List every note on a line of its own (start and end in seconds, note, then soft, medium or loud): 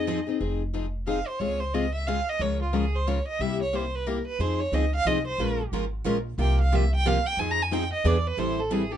0.00 0.20 F2 medium
0.00 0.29 D#5 medium
0.07 0.18 F3 medium
0.07 0.19 C4 medium
0.07 0.19 D#4 medium
0.07 0.19 G#4 loud
0.27 0.39 C4 medium
0.27 0.39 D#4 medium
0.27 0.40 G#4 medium
0.40 1.20 F1 medium
0.40 0.61 F3 medium
0.40 0.61 C4 medium
0.40 0.61 D#4 medium
0.40 0.61 G#4 medium
0.74 0.85 F3 medium
0.74 0.85 C4 medium
0.74 0.85 D#4 medium
0.74 0.85 G#4 medium
1.07 1.18 F3 medium
1.07 1.18 C4 medium
1.07 1.18 D#4 medium
1.07 1.18 G#4 medium
1.07 1.29 F5 medium
1.27 1.41 C5 medium
1.39 2.20 C#2 medium
1.39 1.61 C#3 medium
1.39 1.61 G#3 medium
1.39 1.61 C4 medium
1.39 1.61 F4 medium
1.39 1.61 G#4 medium
1.39 1.61 C#5 medium
1.60 1.75 C5 medium
1.74 1.85 C#3 medium
1.74 1.85 G#3 medium
1.74 1.85 C4 medium
1.74 1.85 F4 medium
1.74 1.85 G#4 medium
1.74 1.94 D#5 medium
1.94 2.09 E5 medium
2.07 2.18 C#3 medium
2.07 2.18 G#3 medium
2.07 2.19 C4 loud
2.07 2.19 F4 medium
2.07 2.19 G#4 loud
2.07 2.31 F5 medium
2.29 2.43 D#5 medium
2.39 3.19 C#2 medium
2.39 2.61 C#3 medium
2.39 2.61 F3 medium
2.39 2.61 G#3 medium
2.39 2.61 C#4 medium
2.39 2.61 F4 medium
2.39 2.61 A#4 medium
2.39 2.61 C#5 medium
2.62 2.77 F4 medium
2.73 2.84 C#3 medium
2.73 2.84 F3 medium
2.73 2.84 G#3 medium
2.73 2.84 C#4 medium
2.73 2.84 F4 medium
2.73 2.97 G#4 medium
2.73 2.84 A#4 medium
2.95 3.10 C5 medium
3.07 3.18 C#3 medium
3.07 3.18 F3 medium
3.07 3.18 G#3 medium
3.07 3.18 C#4 medium
3.07 3.18 F4 medium
3.07 3.18 A#4 loud
3.07 3.27 C#5 medium
3.28 3.42 D#5 medium
3.39 4.19 C2 medium
3.39 3.61 C3 medium
3.39 3.61 G3 medium
3.39 3.61 A#3 medium
3.39 3.61 E4 medium
3.39 3.61 G4 medium
3.39 3.61 E5 medium
3.62 3.77 C#5 medium
3.73 3.84 C3 medium
3.73 3.84 G3 medium
3.73 3.84 A#3 medium
3.73 3.84 E4 medium
3.73 3.84 G4 medium
3.73 3.97 C5 medium
3.96 4.09 B4 medium
4.06 4.17 C3 medium
4.06 4.17 G3 medium
4.06 4.18 A#3 medium
4.06 4.18 E4 medium
4.06 4.18 G4 medium
4.06 4.26 A#4 medium
4.27 4.42 B4 medium
4.39 4.66 F2 medium
4.39 4.60 F3 medium
4.39 4.60 C4 medium
4.39 4.60 D#4 medium
4.39 4.61 G#4 medium
4.39 4.62 C5 medium
4.60 4.76 C#5 medium
4.72 5.00 C#2 medium
4.72 4.84 F3 medium
4.72 4.84 C4 medium
4.72 4.84 D#4 medium
4.72 4.84 G#4 medium
4.72 4.94 D#5 medium
4.95 5.09 F5 loud
5.05 5.34 C2 medium
5.05 5.17 F3 medium
5.05 5.17 C4 medium
5.05 5.17 D#4 loud
5.05 5.18 G#4 loud
5.05 5.26 D#5 medium
5.27 5.58 C5 medium
5.38 5.65 A#1 medium
5.38 5.60 F3 medium
5.38 5.60 G#3 medium
5.38 5.60 C#4 medium
5.38 5.60 F4 medium
5.38 5.60 A#4 medium
5.72 6.00 G#1 medium
5.72 5.84 F3 medium
5.72 5.84 G#3 medium
5.72 5.84 C#4 medium
5.72 5.84 F4 medium
5.72 5.84 A#4 medium
6.05 6.33 A#1 medium
6.05 6.16 F3 loud
6.05 6.17 G#3 medium
6.05 6.17 C#4 medium
6.05 6.17 F4 medium
6.05 6.17 A#4 loud
6.38 7.18 C2 medium
6.38 6.59 C3 medium
6.38 6.59 F3 medium
6.38 6.60 A#3 medium
6.38 6.59 F4 medium
6.38 6.60 G4 medium
6.38 6.59 G5 medium
6.61 6.77 F5 medium
6.72 6.83 C3 medium
6.72 6.83 F3 medium
6.72 6.84 A#3 medium
6.72 6.84 F4 medium
6.72 6.84 G4 medium
6.72 6.94 E5 medium
6.95 7.09 G5 loud
7.05 7.16 C3 medium
7.05 7.16 F3 medium
7.05 7.17 A#3 medium
7.05 7.17 F4 loud
7.05 7.17 G4 loud
7.05 7.28 F5 medium
7.27 7.41 G5 loud
7.37 7.91 F2 medium
7.37 7.59 F3 medium
7.37 7.59 C4 medium
7.37 7.59 D#4 medium
7.37 7.60 G#4 medium
7.37 7.53 G#5 medium
7.51 7.64 A#5 loud
7.62 7.74 G#5 medium
7.71 7.83 F3 medium
7.71 7.83 C4 medium
7.71 7.83 D#4 medium
7.71 7.83 G#4 medium
7.71 7.92 G5 medium
7.93 8.08 D#5 medium
8.04 8.31 E2 medium
8.04 8.16 E3 medium
8.04 8.16 B3 medium
8.04 8.16 D4 loud
8.04 8.16 G#4 medium
8.04 8.16 B4 loud
8.04 8.29 D5 medium
8.27 8.40 B4 medium
8.37 8.97 A1 medium
8.37 8.59 E3 medium
8.37 8.59 G3 medium
8.37 8.59 C4 medium
8.37 8.59 E4 medium
8.37 8.59 A4 medium
8.37 8.61 C5 medium
8.59 8.74 A4 medium
8.70 8.82 E3 medium
8.70 8.82 G3 medium
8.70 8.82 C4 medium
8.70 8.82 E4 medium
8.70 8.93 G#4 medium
8.70 8.82 A4 medium
8.91 8.97 C4 soft
8.91 8.97 E4 soft
8.91 8.97 G4 medium
8.91 8.97 A4 soft